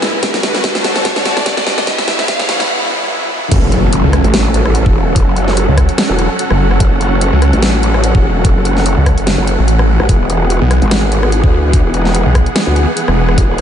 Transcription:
Already playing: supersaw synth E2 B2 G#3 E4, string section E4 B4 G#5, riser
0.02 snare
0.23 supersaw synth D2 D3 A3 F#4, string section F#4, kick, snare, closed hi-hat
0.34 snare
0.43 snare, closed hi-hat
0.55 snare
0.64 kick, snare, closed hi-hat
0.75 string section A5, snare
0.84 string section D5, snare, closed hi-hat
0.96 snare, closed hi-hat
1.05 kick, snare, closed hi-hat
1.16 snare
1.25 snare, closed hi-hat
1.37 snare
1.46 kick, snare, closed hi-hat
1.57 snare
1.67 snare
1.78 snare
1.87 supersaw synth C#2 C#3 B3 E4, string section E4, kick, snare, closed hi-hat
1.98 snare
2.08 snare, closed hi-hat
2.19 snare
2.28 kick, snare, closed hi-hat
2.33 string section C#5
2.39 snare, closed hi-hat
2.49 snare, closed hi-hat
2.60 string section B5, snare, closed hi-hat
3.51 wobble bass F#1, supersaw synth F#3 C#4 A4 F#5, kick, closed hi-hat, crash, impact
3.63 wobble bass F#1
3.72 closed hi-hat
3.93 closed hi-hat
4.04 detuned saw bass C#2
4.13 cross-stick, closed hi-hat
4.24 wobble bass A1, closed hi-hat
4.34 snare, closed hi-hat
4.54 closed hi-hat
4.66 cross-stick
4.75 closed hi-hat
4.86 wobble bass E1, kick
5.16 kick, closed hi-hat
5.27 wobble bass F#1
5.36 closed hi-hat
5.48 snare
5.57 closed hi-hat
5.68 detuned saw bass C#2
5.78 kick, cross-stick, closed hi-hat
5.89 closed hi-hat
5.98 snare, closed hi-hat
6.09 wobble bass E1
6.19 closed hi-hat
6.39 closed hi-hat
6.50 detuned saw bass F#1, cross-stick
6.71 cross-stick
6.80 wobble bass F#1, kick, closed hi-hat
6.92 wobble bass F#1
7.01 closed hi-hat
7.21 closed hi-hat
7.33 detuned saw bass C#2
7.42 cross-stick, closed hi-hat
7.53 wobble bass A1, closed hi-hat
7.63 snare, closed hi-hat
7.83 closed hi-hat
7.94 cross-stick
8.04 closed hi-hat
8.15 wobble bass E1, kick
8.45 kick, closed hi-hat
8.56 wobble bass F#1
8.65 closed hi-hat
8.76 snare
8.86 closed hi-hat
8.97 detuned saw bass C#2
9.06 kick, cross-stick, closed hi-hat
9.18 detuned saw bass F#1, closed hi-hat
9.27 snare, closed hi-hat
9.38 wobble bass F#1
9.47 closed hi-hat
9.59 detuned saw bass A1
9.68 closed hi-hat
9.79 cross-stick
10.00 wobble bass A1, cross-stick
10.09 wobble bass E1, supersaw synth E3 B3 G#4 F#5, kick, closed hi-hat
10.20 wobble bass E1
10.30 closed hi-hat
10.50 closed hi-hat
10.61 detuned saw bass B1
10.71 cross-stick, closed hi-hat
10.82 wobble bass G#1, closed hi-hat
10.91 snare, closed hi-hat
11.12 closed hi-hat
11.23 cross-stick
11.32 closed hi-hat
11.44 wobble bass D2, kick
11.73 kick, closed hi-hat
11.85 wobble bass E1
11.94 closed hi-hat
12.05 snare
12.15 closed hi-hat
12.26 detuned saw bass B1
12.35 kick, cross-stick, closed hi-hat
12.46 closed hi-hat
12.56 snare, closed hi-hat
12.67 wobble bass D2
12.76 closed hi-hat
12.97 closed hi-hat
13.08 detuned saw bass E1, cross-stick
13.29 cross-stick
13.38 wobble bass E1, kick, closed hi-hat
13.49 wobble bass E1

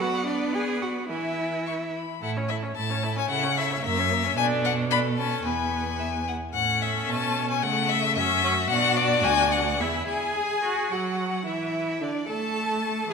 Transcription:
0.00 viola B3, cello F#4, violin D5 F#5
0.27 cello D4, violin D5
0.55 cello G#4, violin G#5
0.82 cello F#4, violin F#5
1.10 viola E3, cello E4, violin E5 G#5
1.66 violin C#6
1.95 violin B5
2.22 cello A2, viola E4, violin A4 F#5
2.37 viola C#4, violin C#5
2.49 viola E4, violin A4 E5
2.63 viola C#4, violin C#5
2.76 cello A2, viola E4, violin A4 A5
2.90 viola C#4, violin C#5
3.03 viola E4, violin A4
3.17 viola C#4, violin C#5 G#5
3.29 cello C#3, viola E4, violin A4 F#5
3.43 viola C#4, violin C#5
3.57 viola E4, violin A4 E5
3.71 viola C#4, violin C#5
3.84 cello F#2, viola A#3, violin A#4 E5
3.98 viola C#4, violin C#5
4.11 viola A#3, violin A#4
4.24 viola C#4, violin C#5
4.37 cello B2, viola D4, violin A4 G#5
4.65 violin F#5
4.91 viola D4, violin A4 B5
5.18 viola C#4, violin A5
5.44 cello E2, viola B3, violin B4 G#5
6.00 violin E5
6.28 violin F#5
6.54 cello A2, viola C#4, violin A4 F#5
6.82 violin E5
7.09 cello B2, violin A5
7.51 violin G#5
7.62 cello C#3, viola A3, violin A4 F#5
7.89 violin E5
8.16 cello F#2, viola C#4, violin F#4 E5
8.44 viola C#4
8.70 cello B2, viola D4, violin F#5
8.97 violin D5
9.24 cello D2, violin G#5
9.52 violin F#5
9.79 cello E2, viola E4, violin G#4 E5
10.07 cello G#4, violin G#5
10.36 viola G#4
10.64 viola F#4
10.92 viola F#3, cello F#4, violin F#5
11.46 viola E3, cello E4, violin E5
12.01 viola D3, cello D4, violin D5
12.29 viola A3, cello A4, violin A5
13.10 cello G#4, violin G#5

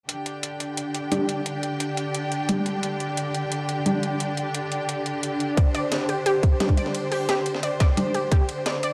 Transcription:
0.09 string section D3 D4 G4 G5, closed hi-hat
0.26 closed hi-hat
0.43 closed hi-hat
0.60 closed hi-hat
0.77 closed hi-hat
0.95 closed hi-hat
1.12 synth stab G3 D4 G4, closed hi-hat
1.29 closed hi-hat
1.46 closed hi-hat
1.63 closed hi-hat
1.80 closed hi-hat
1.97 closed hi-hat
2.15 closed hi-hat
2.32 closed hi-hat
2.49 synth stab G3 D4 G4, closed hi-hat
2.66 closed hi-hat
2.83 closed hi-hat
3.00 closed hi-hat
3.17 closed hi-hat
3.35 closed hi-hat
3.52 closed hi-hat
3.69 closed hi-hat
3.86 synth stab G3 D4 G4, closed hi-hat
4.03 closed hi-hat
4.20 closed hi-hat
4.37 closed hi-hat
4.55 closed hi-hat
4.72 closed hi-hat
4.89 closed hi-hat
5.06 closed hi-hat
5.23 closed hi-hat
5.40 closed hi-hat
5.57 string section C5, synth arpeggio sound D5, kick, closed hi-hat, ride
5.75 synth arpeggio sound D5, closed hi-hat, ride
5.92 snare, closed hi-hat, ride
6.09 synth arpeggio sound G4, closed hi-hat, ride
6.26 synth arpeggio sound G4, closed hi-hat, ride
6.43 kick, closed hi-hat, ride
6.60 synth stab G3 D4 G4, synth arpeggio sound D5, snare, closed hi-hat, ride
6.69 kick, ride
6.77 synth arpeggio sound D5, closed hi-hat, ride
6.86 snare
6.95 closed hi-hat, ride
7.12 synth arpeggio sound G4, closed hi-hat, open hi-hat
7.29 synth arpeggio sound G4, snare, closed hi-hat, ride
7.46 closed hi-hat, ride
7.55 snare
7.63 synth arpeggio sound D5, closed hi-hat, ride
7.80 synth arpeggio sound D5, kick, snare, closed hi-hat, ride
7.97 synth stab G3 D4 G4, closed hi-hat, ride
8.14 synth arpeggio sound G4, closed hi-hat, ride
8.32 synth arpeggio sound G4, kick, closed hi-hat, ride
8.49 closed hi-hat, ride
8.66 synth arpeggio sound D5, snare, closed hi-hat, ride
8.83 synth arpeggio sound D5, closed hi-hat, ride

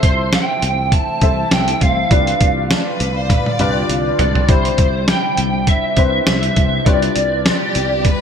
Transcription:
Already playing: ambient pad C3 E3 A3 E4, grand piano C4 E4 A4 C5 E5
0.03 fretless electric bass C2, lead electric guitar C5, kick, closed hi-hat
0.33 lead electric guitar G5, snare, closed hi-hat, tambourine
0.62 fretless electric bass C2, closed hi-hat
0.92 lead electric guitar A5, kick, closed hi-hat
1.21 fretless electric bass C2, grand piano C4 E4 A4 C5 E5, kick, closed hi-hat
1.51 fretless electric bass C2, lead electric guitar G5, snare, closed hi-hat, tambourine
1.68 closed hi-hat
1.81 fretless electric bass C2, lead electric guitar F5, kick, closed hi-hat
2.11 fretless electric bass C2, ambient pad D3 G3 D4 F4, grand piano D4 F4 G4 B4 D5, kick, closed hi-hat
2.27 closed hi-hat
2.41 fretless electric bass C2, kick, closed hi-hat
2.70 violin section A4, snare, closed hi-hat, tambourine
2.87 violin section B4
3.00 fretless electric bass C2, closed hi-hat
3.16 violin section C5
3.30 violin section B4, kick, closed hi-hat, high tom
3.46 violin section D5, high tom
3.59 fretless electric bass C2, grand piano D4 F4 G4 B4 D5, closed hi-hat, mid tom
3.89 fretless electric bass C2, closed hi-hat
4.19 fretless electric bass C2, lead electric guitar D5, closed hi-hat, floor tom
4.35 floor tom
4.48 fretless electric bass C2, ambient pad C3 E4, grand piano C4 E4 G4 C5 B5, lead electric guitar C5, kick, closed hi-hat
4.65 closed hi-hat
4.78 fretless electric bass C2, kick, closed hi-hat
5.08 lead electric guitar G5, snare, closed hi-hat, tambourine
5.37 fretless electric bass C2, closed hi-hat
5.67 lead electric guitar E5, kick, closed hi-hat
5.97 fretless electric bass C2, grand piano C4 E4 G4 B4 C5, kick, closed hi-hat
6.27 fretless electric bass C2, lead electric guitar E5, snare, closed hi-hat, tambourine
6.43 closed hi-hat
6.56 fretless electric bass C2, kick, closed hi-hat
6.86 fretless electric bass C2, ambient pad D3 G3 B3 F4, grand piano D4 F4 G4 B4 C#5, lead electric guitar D5, kick, closed hi-hat
6.94 grand piano D5
7.02 closed hi-hat
7.16 fretless electric bass C2, closed hi-hat
7.46 violin section G4, snare, closed hi-hat, tambourine
7.75 fretless electric bass C2, closed hi-hat
8.05 violin section B4, kick, closed hi-hat

